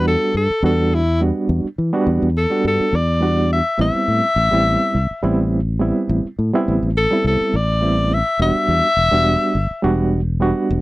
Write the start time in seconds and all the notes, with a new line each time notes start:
Already playing: E2 G3 B3 D4 F#4
0.08 A4
0.34 G2 A4
0.50 muted fingered electric bass stroke
0.63 E2 G3 B3 D4 F#4 A4
0.95 E4
1.20 G3 B3 D4 F#4
1.49 E2
1.65 muted fingered electric bass stroke
1.78 E3
1.93 G3 B3 D4 F#4
2.07 E2
2.22 E2
2.38 A4
2.50 G3 B3 D4 F#4
2.65 G2 A4
2.80 muted fingered electric bass stroke
2.93 E2 D5
3.21 G3 B3 D4 F#4
3.53 E5
3.78 A1 G3 B3 C4 E4 E5
4.08 A2
4.36 A1
4.51 A1 G3 B3 C4 E4
4.95 C2
5.22 A1 G3 B3 C4 E4
5.80 G3 B3 C4 E4
6.09 A1
6.25 muted fingered electric bass stroke
6.39 A2
6.53 G3 B3 C4 E4
6.68 A1
6.83 A1
6.97 A4
7.11 G3 B3 C4 E4
7.24 C2 A4
7.54 A1 D5
7.81 G3 B3 C4 E4
8.14 E5
8.39 E1 G3 B3 D4 F#4 E5
8.55 muted fingered electric bass stroke
8.68 E2
8.97 E1
9.12 E1 G3 B3 D4 F#4
9.55 G1
9.82 E1 G3 B3 D4 F#4
10.40 G3 B3 D4 F#4
10.71 E1